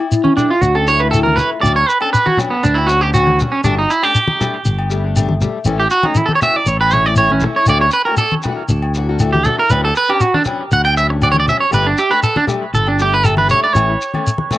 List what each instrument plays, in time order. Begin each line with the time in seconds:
0.00 steel-string acoustic guitar E4, muted steel-string acoustic guitar stroke
0.12 shekere
0.24 clean electric guitar C#4, high conga
0.37 steel-string acoustic guitar F#3 A3 E4, clean electric guitar D4, low conga, low agogo, shekere
0.50 clean electric guitar F4
0.62 fingered electric bass D2, clean electric guitar F#4, shekere
0.75 clean electric guitar A4, low agogo
0.87 steel-string acoustic guitar F#3 A3 E4, clean electric guitar C#5, shekere
1.00 steel-string acoustic guitar A3 E4, clean electric guitar B4
1.11 steel-string acoustic guitar F#3, clean electric guitar A4, low agogo, shekere
1.15 steel-string acoustic guitar A3 E4
1.23 clean electric guitar A#4, high conga
1.36 steel-string acoustic guitar F#3 A3 E4, clean electric guitar B4, low conga, shekere
1.61 fingered electric bass D2, steel-string acoustic guitar F#3 C#4 D4, clean electric guitar D5, low agogo, shekere
1.76 clean electric guitar C#5
1.89 clean electric guitar B4, shekere
2.00 steel-string acoustic guitar C#4 D4, clean electric guitar A4, low agogo
2.13 clean electric guitar B4, shekere
2.26 clean electric guitar F#4, high conga
2.37 steel-string acoustic guitar F#3 C#4 D4, muted clean electric guitar stroke, low conga, low agogo, shekere
2.50 clean electric guitar B3
2.63 fingered electric bass D2, clean electric guitar D4, shekere
2.74 clean electric guitar E4, low agogo
2.87 steel-string acoustic guitar F#3 C#4, clean electric guitar F#4, shekere
2.91 steel-string acoustic guitar D4
3.01 steel-string acoustic guitar C#4 D4, clean electric guitar G4
3.13 steel-string acoustic guitar F#3 C#4 D4, clean electric guitar F#4, low agogo, shekere
3.27 high conga
3.39 steel-string acoustic guitar F#3 C#4 D4, low conga, shekere
3.52 clean electric guitar C#4
3.64 fingered electric bass G1, steel-string acoustic guitar G3 A3 D4, clean electric guitar D4, low agogo, shekere
3.78 clean electric guitar D#4
3.90 clean electric guitar E4, shekere
4.03 steel-string acoustic guitar A3 D4, clean electric guitar G4, low agogo
4.15 shekere
4.28 high conga
4.39 steel-string acoustic guitar G3 A3 D4, low conga, low agogo, shekere
4.65 fingered electric bass G1, shekere
4.79 low agogo
4.90 steel-string acoustic guitar G3 A3 D4, shekere
5.04 steel-string acoustic guitar A3 D4
5.16 steel-string acoustic guitar G3 A3 D4, low agogo, shekere
5.29 high conga
5.41 steel-string acoustic guitar G3 A3 D4, low conga, shekere
5.65 fingered electric bass A1, steel-string acoustic guitar E3 A3 C#4, low agogo, shekere
5.80 clean electric guitar G4
5.90 clean electric guitar F#4, shekere
6.03 steel-string acoustic guitar A3 C#4, clean electric guitar D#4, high conga, low agogo
6.15 clean electric guitar E4, high conga, shekere
6.26 clean electric guitar A4, high conga
6.35 clean electric guitar C#5
6.41 steel-string acoustic guitar E3 A3 C#4, clean electric guitar E5, low conga, low agogo, shekere
6.56 clean electric guitar D5
6.66 fingered electric bass A1, clean electric guitar C#5, shekere
6.81 clean electric guitar B4, low agogo
6.91 steel-string acoustic guitar E3 A3 C#4, clean electric guitar C#5, low conga, shekere
7.04 steel-string acoustic guitar A3 C#4, clean electric guitar D5
7.16 steel-string acoustic guitar E3 A3 C#4, clean electric guitar C#5, low agogo, shekere
7.30 clean electric guitar C#4, high conga
7.40 steel-string acoustic guitar E3 A3, muted clean electric guitar stroke, low conga, shekere
7.45 steel-string acoustic guitar C#4
7.56 clean electric guitar C#5
7.66 fingered electric bass D2, steel-string acoustic guitar A3 D4 F#4, clean electric guitar D5, muted steel-string acoustic guitar stroke, low agogo, shekere
7.81 clean electric guitar C#5
7.91 clean electric guitar B4, shekere
8.05 steel-string acoustic guitar F#4, clean electric guitar A#4, low agogo
8.10 steel-string acoustic guitar A3 D4
8.17 clean electric guitar A4, shekere
8.32 high conga
8.43 low conga, low agogo, shekere
8.47 steel-string acoustic guitar E3 A3 D4 F#4
8.69 fingered electric bass D2, shekere
8.82 low agogo
8.95 steel-string acoustic guitar E3 D4 F#4, muted steel-string acoustic guitar stroke, shekere
9.09 steel-string acoustic guitar A3 D4 F#4
9.19 steel-string acoustic guitar E3 A3 D4 F#4, low agogo, shekere
9.33 clean electric guitar G4, high conga
9.44 steel-string acoustic guitar E3 A3 D4, clean electric guitar A4, low conga, shekere
9.49 steel-string acoustic guitar F#4
9.59 clean electric guitar A#4
9.70 fingered electric bass D2, steel-string acoustic guitar F#3 C#4 D4, clean electric guitar B4, low agogo, shekere
9.85 clean electric guitar A4
9.95 clean electric guitar B4, shekere
10.08 steel-string acoustic guitar C#4 D4, clean electric guitar G4, low agogo
10.20 clean electric guitar F#4, shekere
10.34 clean electric guitar D4, high conga
10.45 steel-string acoustic guitar F#3 C#4, low conga, low agogo, shekere
10.49 steel-string acoustic guitar D4
10.72 fingered electric bass D2, clean electric guitar F#5, shekere
10.84 clean electric guitar G5, low agogo
10.97 steel-string acoustic guitar F#3 C#4 D4, clean electric guitar E5, shekere
11.10 steel-string acoustic guitar C#4 D4, muted clean electric guitar stroke
11.22 steel-string acoustic guitar F#3 C#4 D4, clean electric guitar D5, low agogo, shekere
11.32 clean electric guitar C#5, high conga
11.40 clean electric guitar D5
11.48 steel-string acoustic guitar F#3 C#4 D4, clean electric guitar E5, low conga, shekere
11.60 clean electric guitar C#5
11.71 fingered electric bass G1, steel-string acoustic guitar G3 A3 D4, clean electric guitar B4, low agogo, shekere
11.86 clean electric guitar D4
11.98 clean electric guitar G4, shekere
12.09 steel-string acoustic guitar A3 D4, clean electric guitar B4, low agogo
12.23 clean electric guitar A4, shekere
12.36 clean electric guitar D4, high conga
12.47 steel-string acoustic guitar G3 A3 D4, low conga, low agogo, shekere
12.74 fingered electric bass G1, clean electric guitar A4, shekere
12.87 clean electric guitar D4, low agogo
12.99 steel-string acoustic guitar G3 A3 D4, clean electric guitar G4, shekere
13.10 steel-string acoustic guitar A3 D4, clean electric guitar B4
13.23 steel-string acoustic guitar G3 A3 D4, clean electric guitar A4, low agogo, shekere
13.37 clean electric guitar B4, high conga
13.48 steel-string acoustic guitar G3 A3 D4, clean electric guitar C#5, low conga, shekere
13.64 clean electric guitar D5
13.74 fingered electric bass A1, steel-string acoustic guitar E3 A3 C#4, clean electric guitar C#5, low agogo, shekere
14.01 shekere
14.14 steel-string acoustic guitar A3 C#4, high conga, low agogo
14.27 shekere
14.38 high conga
14.51 steel-string acoustic guitar E3 A3 C#4, low conga, low agogo, shekere